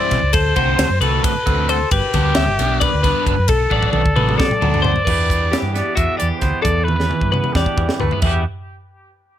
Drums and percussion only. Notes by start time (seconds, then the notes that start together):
0.11 kick, snare, ride
0.33 kick, ride
0.56 kick, ride
0.79 snare, ride
1.01 ride
1.24 kick, snare, ride
1.47 kick, ride
1.69 ride
1.91 kick, ride
2.14 kick, snare, ride
2.35 snare, ride
2.59 snare, ride
2.81 kick, snare, ride
3.04 kick, snare, ride
3.27 kick, ride
3.48 kick, ride
3.71 kick
3.83 kick
3.93 high tom
4.06 kick
4.16 mid tom
4.29 mid tom
4.40 kick, snare
4.51 mid tom
4.62 mid tom
4.74 floor tom
4.84 floor tom
4.96 floor tom
5.07 kick, crash
5.30 kick, closed hi-hat
5.53 snare, closed hi-hat
5.75 snare, closed hi-hat
5.97 kick, closed hi-hat
6.20 closed hi-hat
6.41 kick, snare, closed hi-hat
6.65 kick, closed hi-hat
6.88 high tom
7.00 snare
7.11 high tom
7.21 kick
7.34 mid tom
7.44 mid tom
7.55 kick, snare
7.66 kick
7.78 kick
7.89 snare
8.00 floor tom
8.11 floor tom
8.22 kick, crash